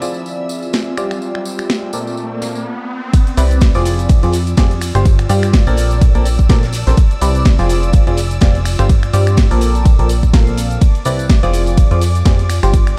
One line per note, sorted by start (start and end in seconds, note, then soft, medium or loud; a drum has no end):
0.00 0.95 F3 medium
0.00 2.65 C4 medium
0.00 0.95 C4 medium
0.00 0.95 F4 medium
0.00 0.95 G#4 medium
0.00 2.66 D5 medium
0.00 0.95 D5 medium
0.00 2.65 E5 medium
0.00 0.41 B5 medium
0.00 2.65 E6 medium
0.00 tambourine medium
0.00 riser medium
0.12 2.41 F4 medium
0.12 tambourine soft
0.26 tambourine medium
0.49 tambourine medium
0.62 tambourine soft
0.73 snare loud
0.73 tambourine medium
0.97 1.91 G3 medium
0.97 1.91 C4 medium
0.97 1.91 F4 medium
0.97 1.91 G4 medium
0.97 1.91 D5 medium
0.97 finger snap medium
0.97 tambourine medium
1.11 2.41 G5 medium
1.11 finger snap medium
1.11 tambourine soft
1.22 tambourine soft
1.35 finger snap medium
1.45 tambourine medium
1.59 finger snap medium
1.59 tambourine soft
1.70 snare loud
1.70 tambourine medium
1.93 2.65 A#2 medium
1.93 2.65 C4 medium
1.93 2.65 A4 medium
1.93 2.65 A#4 medium
1.93 2.65 D5 medium
1.93 tambourine medium
2.07 tambourine soft
2.17 tambourine soft
2.42 snare soft
2.42 tambourine medium
2.55 tambourine soft
3.13 10.80 D5 medium
3.13 10.83 E6 medium
3.13 kick loud
3.13 closed hi-hat medium
3.13 closed hi-hat loud
3.13 ride medium
3.13 tambourine medium
3.13 cabasa soft
3.27 closed hi-hat soft
3.27 cabasa soft
3.37 3.72 C2 loud
3.37 3.72 C3 loud
3.37 3.72 C4 medium
3.37 3.72 E4 medium
3.37 3.72 B4 medium
3.37 3.72 D5 loud
3.37 closed hi-hat medium
3.37 open hi-hat loud
3.37 tambourine medium
3.37 cabasa medium
3.47 4.25 B5 medium
3.47 closed hi-hat soft
3.51 tambourine soft
3.51 cabasa soft
3.61 kick loud
3.61 snare loud
3.61 closed hi-hat medium
3.61 ride medium
3.61 tambourine medium
3.61 cabasa soft
3.74 4.20 F1 medium
3.74 4.20 F3 loud
3.74 4.20 C4 medium
3.74 4.20 F4 medium
3.74 4.20 G#4 medium
3.74 4.20 D5 loud
3.74 snare soft
3.74 closed hi-hat soft
3.74 tambourine soft
3.74 cabasa soft
3.85 closed hi-hat medium
3.85 open hi-hat loud
3.85 tambourine medium
3.85 cabasa medium
3.99 closed hi-hat soft
3.99 tambourine soft
3.99 cabasa soft
4.08 6.25 F4 medium
4.08 kick loud
4.08 closed hi-hat medium
4.08 ride medium
4.08 tambourine medium
4.08 cabasa soft
4.23 4.55 F2 loud
4.23 4.35 F3 medium
4.23 4.35 C4 medium
4.23 4.35 F4 medium
4.23 4.35 G#4 medium
4.23 4.35 D5 loud
4.23 closed hi-hat soft
4.23 cabasa soft
4.32 snare soft
4.32 closed hi-hat medium
4.32 open hi-hat loud
4.32 tambourine medium
4.32 cabasa medium
4.47 closed hi-hat soft
4.47 tambourine soft
4.47 cabasa soft
4.57 4.92 F2 loud
4.57 4.72 G3 loud
4.57 4.72 C4 medium
4.57 4.72 F4 medium
4.57 4.72 G#4 medium
4.57 4.72 D5 loud
4.57 kick loud
4.57 snare loud
4.57 closed hi-hat medium
4.57 ride medium
4.57 tambourine medium
4.57 cabasa soft
4.71 closed hi-hat soft
4.71 cabasa soft
4.81 finger snap medium
4.81 open hi-hat medium
4.81 open hi-hat loud
4.81 tambourine medium
4.81 cabasa medium
4.95 5.27 G1 loud
4.95 5.07 G3 medium
4.95 5.07 C4 medium
4.95 5.07 F4 medium
4.95 5.07 G4 medium
4.95 5.07 C5 loud
4.95 finger snap medium
4.95 closed hi-hat soft
4.95 tambourine soft
4.95 cabasa soft
5.05 kick loud
5.05 closed hi-hat medium
5.05 ride medium
5.05 tambourine medium
5.05 cabasa soft
5.19 finger snap medium
5.19 closed hi-hat soft
5.19 cabasa soft
5.25 6.25 G5 medium
5.25 closed hi-hat medium
5.29 5.64 G2 loud
5.29 5.64 G3 loud
5.29 5.64 C4 medium
5.29 5.64 F4 medium
5.29 5.64 G4 medium
5.29 5.64 D5 loud
5.29 open hi-hat loud
5.29 tambourine medium
5.29 cabasa medium
5.42 finger snap medium
5.42 closed hi-hat soft
5.42 tambourine soft
5.42 cabasa soft
5.53 kick loud
5.53 snare loud
5.53 closed hi-hat medium
5.53 ride medium
5.53 tambourine medium
5.53 cabasa soft
5.67 6.12 A#1 loud
5.67 6.12 A#2 loud
5.67 6.12 C4 medium
5.67 6.12 A4 medium
5.67 6.12 A#4 loud
5.67 6.12 D5 loud
5.67 closed hi-hat soft
5.67 tambourine soft
5.67 cabasa soft
5.77 closed hi-hat medium
5.77 open hi-hat loud
5.77 tambourine medium
5.77 cabasa medium
5.88 6.97 A#4 medium
5.88 closed hi-hat soft
5.88 tambourine soft
5.88 cabasa soft
6.01 kick loud
6.01 closed hi-hat medium
6.01 ride medium
6.01 tambourine medium
6.01 cabasa soft
6.15 6.47 A#1 loud
6.15 6.27 A#2 medium
6.15 6.27 C4 medium
6.15 6.27 A4 medium
6.15 6.27 A#4 medium
6.15 6.27 D5 loud
6.15 closed hi-hat soft
6.15 cabasa soft
6.25 closed hi-hat medium
6.25 open hi-hat loud
6.25 tambourine loud
6.25 cabasa medium
6.32 7.27 A5 medium
6.39 kick medium
6.39 closed hi-hat soft
6.39 tambourine soft
6.39 cabasa soft
6.49 6.84 A#1 loud
6.49 6.64 A#2 loud
6.49 6.64 C4 medium
6.49 6.64 A4 medium
6.49 6.64 A#4 medium
6.49 6.64 D5 loud
6.49 kick loud
6.49 snare loud
6.49 closed hi-hat medium
6.49 ride medium
6.49 tambourine medium
6.49 cabasa soft
6.63 snare loud
6.63 closed hi-hat medium
6.63 closed hi-hat soft
6.63 cabasa soft
6.72 snare loud
6.72 closed hi-hat medium
6.72 open hi-hat loud
6.72 tambourine medium
6.72 cabasa medium
6.87 6.94 A#1 loud
6.87 6.96 C3 medium
6.87 6.96 C4 medium
6.87 6.96 A4 medium
6.87 6.96 A#4 medium
6.87 6.96 C5 loud
6.87 snare loud
6.87 closed hi-hat soft
6.87 closed hi-hat medium
6.87 tambourine soft
6.87 cabasa soft
6.97 kick loud
6.97 closed hi-hat medium
6.97 ride medium
6.97 tambourine medium
6.97 cabasa soft
7.11 closed hi-hat soft
7.11 cabasa soft
7.21 7.56 C2 loud
7.21 7.56 C3 loud
7.21 7.56 C4 medium
7.21 7.56 E4 medium
7.21 7.56 B4 medium
7.21 7.56 D5 loud
7.21 closed hi-hat medium
7.21 open hi-hat loud
7.21 tambourine loud
7.21 cabasa medium
7.30 8.09 B5 medium
7.35 closed hi-hat soft
7.35 tambourine soft
7.35 cabasa soft
7.45 kick loud
7.45 snare loud
7.45 closed hi-hat medium
7.45 ride medium
7.45 cabasa soft
7.59 8.04 F1 loud
7.59 8.04 F3 loud
7.59 8.04 C4 medium
7.59 8.04 F4 medium
7.59 8.04 G#4 medium
7.59 8.04 D5 loud
7.59 snare soft
7.59 closed hi-hat soft
7.59 tambourine soft
7.59 cabasa soft
7.69 closed hi-hat medium
7.69 open hi-hat loud
7.69 tambourine loud
7.69 cabasa medium
7.83 closed hi-hat soft
7.83 tambourine soft
7.83 cabasa soft
7.87 8.65 G#5 medium
7.93 10.09 F4 medium
7.93 kick loud
7.93 closed hi-hat medium
7.93 ride medium
7.93 tambourine medium
7.93 cabasa soft
8.07 8.39 F1 loud
8.07 8.19 F3 medium
8.07 8.19 C4 medium
8.07 8.19 F4 medium
8.07 8.19 G#4 medium
8.07 8.19 D5 loud
8.07 closed hi-hat soft
8.07 cabasa soft
8.17 snare soft
8.17 closed hi-hat medium
8.17 open hi-hat loud
8.17 tambourine medium
8.17 cabasa medium
8.31 closed hi-hat soft
8.31 tambourine soft
8.31 cabasa soft
8.41 8.76 F1 loud
8.41 8.56 G3 medium
8.41 8.56 C4 medium
8.41 8.56 F4 medium
8.41 8.56 G#4 medium
8.41 8.56 D5 loud
8.41 kick loud
8.41 snare loud
8.41 closed hi-hat medium
8.41 ride medium
8.41 tambourine soft
8.41 cabasa soft
8.55 closed hi-hat soft
8.55 cabasa soft
8.65 finger snap medium
8.65 open hi-hat medium
8.65 open hi-hat loud
8.65 tambourine medium
8.65 cabasa medium
8.79 9.11 G1 loud
8.79 8.91 G3 medium
8.79 8.91 C4 medium
8.79 8.91 F4 medium
8.79 8.91 G4 medium
8.79 8.91 C5 loud
8.79 finger snap medium
8.79 closed hi-hat soft
8.79 tambourine soft
8.79 cabasa soft
8.89 kick loud
8.89 closed hi-hat medium
8.89 ride medium
8.89 tambourine medium
8.89 cabasa soft
9.03 10.09 G5 medium
9.03 finger snap medium
9.03 closed hi-hat soft
9.03 cabasa soft
9.13 9.48 G2 loud
9.13 9.48 G3 loud
9.13 9.48 C4 medium
9.13 9.48 F4 medium
9.13 9.48 G4 medium
9.13 9.48 D5 loud
9.13 closed hi-hat medium
9.13 open hi-hat loud
9.13 tambourine loud
9.13 cabasa medium
9.27 finger snap medium
9.27 closed hi-hat soft
9.27 tambourine soft
9.27 cabasa soft
9.37 kick loud
9.37 snare loud
9.37 closed hi-hat medium
9.37 ride medium
9.37 tambourine medium
9.37 cabasa soft
9.51 9.96 A#1 medium
9.51 9.96 A#2 loud
9.51 9.96 C4 medium
9.51 9.96 A4 medium
9.51 9.96 A#4 medium
9.51 9.96 D5 loud
9.51 closed hi-hat soft
9.51 tambourine soft
9.51 cabasa soft
9.61 closed hi-hat medium
9.61 open hi-hat loud
9.61 tambourine medium
9.61 cabasa medium
9.73 10.81 A#3 medium
9.73 closed hi-hat soft
9.73 tambourine soft
9.73 cabasa soft
9.85 kick loud
9.85 closed hi-hat medium
9.85 ride medium
9.85 tambourine medium
9.85 cabasa soft
9.99 10.31 A#1 loud
9.99 10.11 A#2 medium
9.99 10.11 C4 medium
9.99 10.11 A4 medium
9.99 10.11 A#4 medium
9.99 10.11 D5 medium
9.99 closed hi-hat soft
9.99 cabasa soft
10.05 11.11 A5 medium
10.09 closed hi-hat medium
10.09 open hi-hat loud
10.09 tambourine loud
10.09 cabasa medium
10.23 kick medium
10.23 closed hi-hat soft
10.23 tambourine soft
10.23 cabasa soft
10.33 10.78 A#1 loud
10.33 10.80 A#2 medium
10.33 10.80 C4 medium
10.33 10.80 A4 medium
10.33 10.80 A#4 medium
10.33 10.80 F5 loud
10.33 kick loud
10.33 snare loud
10.33 closed hi-hat medium
10.33 ride medium
10.33 tambourine medium
10.33 cabasa soft
10.47 closed hi-hat soft
10.47 cabasa soft
10.58 closed hi-hat medium
10.58 open hi-hat loud
10.58 tambourine loud
10.58 cabasa medium
10.70 closed hi-hat soft
10.70 tambourine soft
10.70 cabasa soft
10.81 12.99 D5 medium
10.81 12.99 D6 medium
10.81 kick loud
10.81 closed hi-hat medium
10.81 ride medium
10.81 tambourine medium
10.81 cabasa soft
10.95 closed hi-hat soft
10.95 cabasa soft
11.05 11.40 C2 loud
11.05 11.40 C3 medium
11.05 11.40 C4 medium
11.05 11.40 E4 medium
11.05 11.40 B4 medium
11.05 11.40 D5 loud
11.05 closed hi-hat medium
11.05 open hi-hat loud
11.05 tambourine medium
11.05 cabasa medium
11.19 closed hi-hat soft
11.19 tambourine soft
11.19 cabasa soft
11.29 kick loud
11.29 snare loud
11.29 closed hi-hat medium
11.29 ride medium
11.29 tambourine medium
11.29 cabasa soft
11.43 11.88 F1 loud
11.43 11.88 F3 loud
11.43 11.88 C4 medium
11.43 11.88 F4 loud
11.43 11.88 G#4 medium
11.43 11.88 D5 loud
11.43 snare soft
11.43 closed hi-hat soft
11.43 tambourine soft
11.43 cabasa soft
11.53 closed hi-hat medium
11.53 open hi-hat loud
11.53 tambourine medium
11.53 cabasa medium
11.66 12.50 G#5 medium
11.66 closed hi-hat soft
11.66 tambourine soft
11.66 cabasa soft
11.77 12.99 F4 medium
11.77 kick loud
11.77 closed hi-hat medium
11.77 ride medium
11.77 tambourine medium
11.77 cabasa soft
11.91 12.23 F2 loud
11.91 12.03 F3 medium
11.91 12.03 C4 medium
11.91 12.03 F4 medium
11.91 12.03 G#4 medium
11.91 12.03 D5 loud
11.91 closed hi-hat soft
11.91 cabasa soft
12.01 snare soft
12.01 closed hi-hat medium
12.01 open hi-hat loud
12.01 tambourine medium
12.01 cabasa medium
12.15 closed hi-hat soft
12.15 tambourine soft
12.15 cabasa soft
12.25 12.60 F2 loud
12.25 12.40 G3 loud
12.25 12.40 C4 medium
12.25 12.40 F4 medium
12.25 12.40 G#4 medium
12.25 12.40 D5 loud
12.25 kick loud
12.25 snare loud
12.25 closed hi-hat medium
12.25 ride medium
12.25 tambourine medium
12.25 cabasa soft
12.39 closed hi-hat soft
12.39 cabasa soft
12.50 finger snap medium
12.50 open hi-hat loud
12.50 open hi-hat medium
12.50 tambourine loud
12.50 cabasa medium
12.63 12.95 G1 medium
12.63 12.75 G3 medium
12.63 12.75 C4 medium
12.63 12.75 F4 medium
12.63 12.75 G4 medium
12.63 12.75 C5 loud
12.63 finger snap medium
12.63 closed hi-hat soft
12.63 tambourine soft
12.63 cabasa soft
12.73 kick loud
12.73 closed hi-hat medium
12.73 ride medium
12.73 tambourine medium
12.73 cabasa soft
12.87 finger snap medium
12.87 closed hi-hat soft
12.87 cabasa soft
12.93 12.99 G5 medium